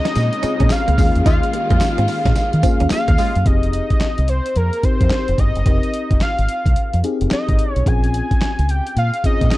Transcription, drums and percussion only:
0.05 snare, closed hi-hat
0.15 snare, closed hi-hat, tambourine
0.33 closed hi-hat
0.43 closed hi-hat, tambourine
0.60 kick, closed hi-hat
0.70 snare, clap, closed hi-hat, tambourine
0.88 closed hi-hat
0.98 kick, open hi-hat, tambourine
1.16 closed hi-hat
1.26 kick, closed hi-hat, tambourine
1.43 closed hi-hat
1.53 closed hi-hat
1.70 kick, closed hi-hat
1.81 snare, clap, closed hi-hat, tambourine
1.98 closed hi-hat
2.08 open hi-hat, tambourine
2.25 kick, snare, closed hi-hat
2.36 snare, closed hi-hat, tambourine
2.53 closed hi-hat
2.63 kick, closed hi-hat, tambourine
2.80 closed hi-hat
2.90 snare, clap, closed hi-hat, tambourine
3.08 kick, closed hi-hat
3.18 open hi-hat, tambourine
3.35 closed hi-hat
3.46 kick, closed hi-hat
3.63 closed hi-hat
3.73 closed hi-hat
3.90 kick, closed hi-hat
4.01 snare, clap, closed hi-hat
4.18 closed hi-hat
4.28 closed hi-hat
4.46 closed hi-hat
4.56 closed hi-hat
4.73 closed hi-hat
4.83 kick, closed hi-hat
5.01 kick, closed hi-hat
5.10 snare, clap, closed hi-hat
5.28 closed hi-hat
5.38 kick, closed hi-hat
5.55 closed hi-hat
5.66 kick, closed hi-hat
5.83 closed hi-hat
5.94 closed hi-hat
6.11 kick, closed hi-hat
6.21 snare, clap, closed hi-hat
6.39 closed hi-hat
6.49 closed hi-hat
6.66 kick, closed hi-hat
6.76 closed hi-hat
6.93 closed hi-hat
7.04 closed hi-hat
7.21 closed hi-hat
7.31 snare, clap, closed hi-hat
7.49 kick, closed hi-hat
7.59 closed hi-hat
7.76 closed hi-hat
7.86 kick, closed hi-hat
8.04 closed hi-hat
8.14 closed hi-hat
8.31 kick, closed hi-hat
8.41 snare, clap, closed hi-hat
8.59 closed hi-hat
8.69 closed hi-hat
8.87 closed hi-hat
8.97 closed hi-hat
9.14 closed hi-hat
9.24 kick, closed hi-hat
9.41 kick, closed hi-hat
9.51 snare, clap, closed hi-hat

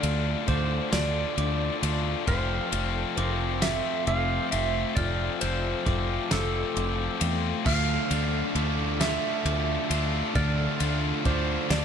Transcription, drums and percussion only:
0.03 ride
0.48 kick, ride
0.93 snare, ride
1.38 ride
1.83 ride
2.27 kick, ride
2.72 ride
3.17 ride
3.62 snare, ride
4.07 ride
4.52 ride
4.96 kick, ride
5.41 ride
5.86 kick, ride
6.31 snare, ride
6.77 ride
7.21 ride
7.66 kick, crash
8.11 ride
8.55 ride
9.01 snare, ride
9.46 ride
9.91 ride
10.35 kick, ride
10.80 ride
11.25 kick, ride
11.71 snare, ride

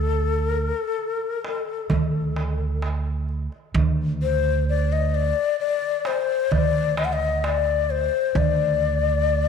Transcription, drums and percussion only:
0.07 darbuka ka
0.98 darbuka ka
1.21 darbuka ka
1.45 darbuka tek
1.90 darbuka dum
2.36 darbuka tek
2.82 darbuka tek
3.29 darbuka ka
3.52 darbuka ka
3.75 darbuka dum
4.67 darbuka ka
5.60 darbuka ka
5.82 darbuka ka
6.05 darbuka tek
6.52 darbuka dum
6.97 darbuka tek
7.44 darbuka tek
7.90 darbuka ka
8.13 darbuka ka
8.36 darbuka dum
8.82 darbuka ka
9.28 darbuka ka

